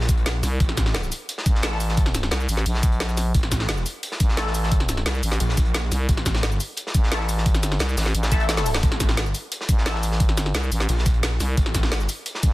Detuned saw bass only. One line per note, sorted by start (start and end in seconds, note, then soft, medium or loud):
0.00 0.42 A#1 loud
0.60 1.10 A1 loud
3.35 3.85 A1 loud
5.40 5.90 A#1 loud
6.09 6.59 A1 loud
8.83 9.33 A1 medium
10.89 11.39 A#1 loud
11.57 12.07 A1 loud